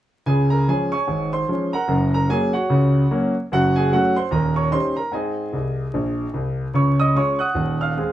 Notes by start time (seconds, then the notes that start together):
0.26 C#2 C#3 G#4 G#5
0.50 A#4 A#5
0.68 F3 G#3 C#4 G#4 G#5
0.92 C#5 G#5 C#6
1.07 G#1 G#2
1.33 C5 C6
1.48 F3 G#3 C#4
1.73 A#4 F#5 A#5
1.88 F#1 F#2
2.14 A#4 A#5
2.29 F#3 A#3 C#4 G#4 G#5
2.53 F#4 C#5 F#5
2.70 C#2 C#3
3.11 F#3 A#3 C#4
3.52 F#1 F#2 F#4 F#5
3.76 G#4 G#5
3.92 F#3 A3 C#4 F#4 F#5
4.16 C5 C6
4.31 D#1 D#2 A#4 A#5
4.56 C#5 C#6
4.71 G3 C#4 D#4 C5 C6
4.96 A#4 A#5
5.12 G#2 C4 G#4 D#5 G#5
5.53 C2
5.94 A#1
6.34 C2
6.74 C#2 C#3 C#5 C#6
7.00 D#5 D#6
7.15 G#3 C#4 F4 C#5 C#6
7.39 F#5 D#6 F#6
7.55 D#1 D#2
7.81 F5 F6
7.97 G#3 C4 G#4